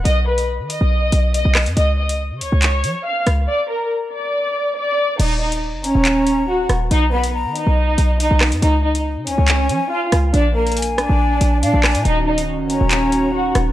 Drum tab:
CC |--------------------------------|--------------------------------|--------------------------------|x-------------------------------|
HH |x-----x-----x-------x---x---o-x-|x-----x-----x---x---x-------x---|--------------------------------|x-----x-----x---x---x-------x---|
CP |----------------------------x---|----------------x---------------|--------------------------------|----------------x---------------|
SD |----------------------------r---|----------------------------r---|--------------------------------|----------------------------r---|

CC |--------------------------------|--------------------------------|--------------------------------|--------------------------------|
HH |x-----x-----x-------x---x---o-x-|x-----x-----x---x---x-------x---|x-----xxxx--x-------x---x---o-x-|x-----x-----x---x---x-------x---|
CP |----------------------------x---|----------------x---------------|----------------------------x---|----------------x---------------|
SD |----------------------------r---|----------------------------r---|------------r---------------r---|----------------------------r---|